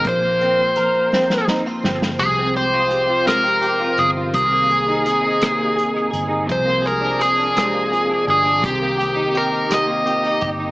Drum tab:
HH |x-x-x-------|x-x-x-x-x-x-|x-x-x-x-x-x-|x-x-x-x-x-x-|
SD |------ooo-oo|------r-----|------r-----|------r-----|
BD |o-----------|o-----------|o-----------|o-----------|

HH |x-x-x-x-x-x-|
SD |------r-----|
BD |o---------o-|